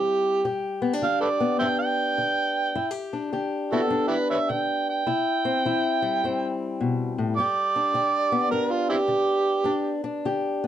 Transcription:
0.00 0.41 E3 medium
0.00 1.40 G3 medium
0.00 0.42 C4 medium
0.00 0.45 E4 medium
0.00 0.44 G4 medium
0.45 0.98 G2 medium
0.45 1.04 G4 medium
0.82 0.93 B3 medium
0.93 1.60 D4 soft
1.02 1.56 D3 medium
1.02 2.75 G4 medium
1.02 1.20 F5 medium
1.21 1.29 A4 soft
1.21 1.27 B4 soft
1.21 1.58 D5 medium
1.40 2.73 B3 medium
1.59 2.14 G2 medium
1.59 2.73 D4 medium
1.59 1.66 C5 medium
1.59 1.66 E5 medium
1.59 1.78 G5 medium
1.79 2.91 G5 medium
2.18 2.71 D3 medium
2.75 3.29 G2 medium
2.75 2.91 E4 medium
2.91 3.31 G4 medium
3.13 3.89 D4 medium
3.33 3.86 D3 medium
3.33 5.06 G4 medium
3.72 5.04 B3 medium
3.72 3.81 E4 medium
3.72 3.80 F#4 medium
3.72 4.07 A4 medium
3.90 4.44 G2 medium
3.90 5.03 D4 medium
4.08 4.16 E4 medium
4.08 4.14 G4 medium
4.08 4.27 B4 medium
4.30 4.37 B4 medium
4.30 4.38 C#5 medium
4.30 4.52 E5 medium
4.50 5.02 D3 medium
4.50 4.87 G5 medium
4.90 6.56 G5 medium
5.07 5.60 C3 medium
5.07 5.64 E4 medium
5.45 6.22 C4 medium
5.65 6.18 E3 medium
5.65 7.37 E4 medium
6.02 8.32 G3 medium
6.24 6.76 G2 medium
6.24 7.35 C4 medium
6.81 7.16 B2 medium
7.18 7.37 A2 medium
7.37 7.90 G2 medium
7.37 7.94 G4 medium
7.37 8.47 D5 loud
7.76 8.52 D4 medium
7.94 8.47 D3 medium
7.94 10.25 G4 medium
8.32 10.63 B3 medium
8.51 9.04 G2 medium
8.51 9.65 D4 medium
8.51 8.72 A#4 medium
8.71 8.89 F4 medium
8.90 8.97 C4 medium
8.90 8.96 E4 medium
8.90 10.00 G4 loud
9.08 9.61 D3 medium
9.64 10.18 G2 medium
9.64 10.03 D4 medium
10.04 10.67 D4 medium
10.25 10.67 D3 medium
10.25 10.67 G4 medium
10.64 10.67 B3 medium

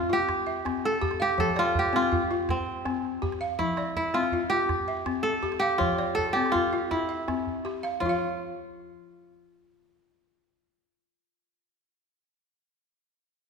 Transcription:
0.00 1.26 F4 medium
0.10 0.28 F4 medium
0.10 1.21 G4 loud
0.20 calabash click soft
0.29 calabash thump medium
0.29 calabash click medium
0.47 1.02 E5 medium
0.47 calabash click soft
0.57 calabash click soft
0.65 1.02 C4 medium
0.65 calabash thump medium
0.65 calabash click medium
0.85 1.40 A4 medium
0.85 calabash click soft
1.02 1.38 G4 medium
1.02 calabash thump medium
1.11 calabash click medium
1.20 1.79 G4 medium
1.20 1.57 F5 medium
1.38 1.75 F3 medium
1.38 2.72 A4 medium
1.38 calabash thump medium
1.48 calabash click soft
1.56 1.95 F4 loud
1.56 2.12 D5 medium
1.56 calabash click medium
1.75 3.20 G4 medium
1.75 calabash thump medium
1.75 calabash click soft
1.93 2.30 C4 medium
1.93 3.47 F4 medium
2.03 calabash click soft
2.12 2.29 F4 medium
2.12 calabash thump medium
2.31 2.49 F4 medium
2.41 calabash click soft
2.49 4.30 C4 medium
2.49 calabash thump medium
2.49 calabash click medium
2.77 calabash click soft
2.85 3.22 C4 medium
2.85 calabash thump medium
2.85 calabash click medium
3.05 calabash click soft
3.22 3.59 G4 medium
3.22 calabash thump medium
3.32 calabash click medium
3.41 3.78 F5 medium
3.59 3.96 F3 medium
3.59 3.96 E4 medium
3.59 calabash thump medium
3.68 calabash click soft
3.77 4.33 D5 medium
3.77 calabash click medium
3.96 4.20 E4 medium
3.96 calabash thump medium
4.14 4.51 C4 medium
4.14 5.66 F4 medium
4.23 calabash click soft
4.32 4.50 F4 medium
4.32 calabash thump medium
4.50 4.69 F4 medium
4.50 5.59 G4 loud
4.60 calabash click soft
4.69 calabash thump medium
4.69 calabash click medium
4.87 5.43 E5 medium
4.87 calabash click soft
4.97 calabash click soft
5.06 5.43 C4 medium
5.06 calabash thump medium
5.06 calabash click medium
5.23 6.14 A4 medium
5.23 calabash click soft
5.43 5.80 G4 medium
5.43 calabash thump medium
5.52 calabash click medium
5.59 6.33 G4 medium
5.59 5.98 F5 medium
5.78 6.16 F3 medium
5.78 6.51 F4 medium
5.78 calabash thump medium
5.98 6.54 D5 medium
5.98 calabash click medium
6.08 calabash click soft
6.15 7.47 A4 medium
6.15 calabash thump medium
6.33 6.72 C4 medium
6.33 7.74 G4 medium
6.46 calabash click soft
6.52 6.97 F4 medium
6.52 6.72 F4 medium
6.52 calabash thump medium
6.52 calabash click soft
6.73 6.91 F4 medium
6.91 8.06 E4 medium
6.91 calabash thump medium
6.91 calabash click medium
7.09 7.64 E5 medium
7.28 7.64 C4 medium
7.28 calabash thump medium
7.28 calabash click medium
7.47 calabash thump soft
7.65 8.01 G4 medium
7.65 calabash click soft
7.83 8.08 F5 medium
7.83 calabash click medium
8.00 11.72 F3 medium
8.00 11.68 F4 medium
8.00 calabash thump medium
8.06 11.74 F4 medium
8.06 11.76 F5 medium

